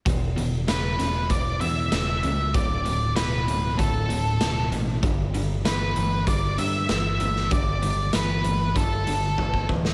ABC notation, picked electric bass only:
X:1
M:4/4
L:1/8
Q:1/4=97
K:Edor
V:1 name="Picked electric bass" clef=bass
E,,, E,,, E,,, E,,, E,,, E,, E,,, C,, | D,,,2 D,,, D,,, D,,, D,,, D,,, A,,, | G,,, G,,, G,,, G,,, G,,, G,, G,,, G,,, | G,,,2 G,,, G,,, G,,, G,,, G,,, D,,, |]